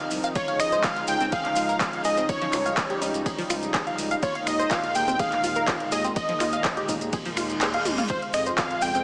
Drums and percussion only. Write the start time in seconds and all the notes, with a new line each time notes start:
0.11 open hi-hat, maracas
0.23 closed hi-hat, maracas
0.35 kick, closed hi-hat, ride, maracas
0.48 closed hi-hat
0.60 finger snap, open hi-hat, maracas
0.72 closed hi-hat, maracas
0.84 kick, clap, closed hi-hat, ride, maracas
0.96 closed hi-hat
1.08 open hi-hat, maracas
1.21 closed hi-hat, maracas
1.32 kick, closed hi-hat, ride, maracas
1.45 clap, closed hi-hat
1.56 open hi-hat, maracas
1.69 closed hi-hat, maracas
1.81 kick, clap, closed hi-hat, ride, maracas
1.93 closed hi-hat
2.04 open hi-hat, maracas
2.17 closed hi-hat, maracas
2.29 kick, closed hi-hat, ride, maracas
2.42 closed hi-hat
2.53 finger snap, clap, open hi-hat, maracas
2.66 closed hi-hat, maracas
2.77 kick, clap, closed hi-hat, ride, maracas
2.90 closed hi-hat
3.02 open hi-hat, maracas
3.14 closed hi-hat, maracas
3.26 kick, closed hi-hat, ride, maracas
3.38 open hi-hat
3.50 finger snap, open hi-hat, maracas
3.63 closed hi-hat, maracas
3.74 kick, clap, closed hi-hat, ride, maracas
3.87 closed hi-hat
3.98 open hi-hat, maracas
4.11 closed hi-hat, maracas
4.23 kick, closed hi-hat, ride, maracas
4.35 closed hi-hat
4.47 finger snap, open hi-hat, maracas
4.59 closed hi-hat, maracas
4.71 kick, clap, closed hi-hat, ride, maracas
4.84 closed hi-hat
4.95 open hi-hat, maracas
5.08 closed hi-hat, maracas
5.19 kick, closed hi-hat, ride, maracas
5.32 clap, closed hi-hat
5.44 open hi-hat, maracas
5.56 closed hi-hat, maracas
5.68 kick, clap, closed hi-hat, ride, maracas
5.80 closed hi-hat
5.92 open hi-hat, maracas
6.04 closed hi-hat, maracas
6.16 kick, closed hi-hat, ride, maracas
6.29 closed hi-hat
6.40 finger snap, clap, open hi-hat, maracas
6.53 closed hi-hat, maracas
6.64 kick, clap, closed hi-hat, ride, maracas
6.77 closed hi-hat
6.89 kick, open hi-hat, maracas
7.01 closed hi-hat, maracas
7.13 kick, closed hi-hat, ride, maracas
7.25 open hi-hat
7.37 finger snap, open hi-hat, maracas
7.50 closed hi-hat, maracas
7.61 clap, closed hi-hat, ride, maracas
7.74 closed hi-hat
7.85 open hi-hat, high tom, maracas
7.98 closed hi-hat, mid tom, maracas
8.09 kick, closed hi-hat, ride, maracas
8.22 closed hi-hat
8.33 finger snap, open hi-hat, maracas
8.46 closed hi-hat, maracas
8.58 kick, clap, closed hi-hat, ride, maracas
8.71 closed hi-hat
8.82 open hi-hat, maracas
8.95 closed hi-hat, maracas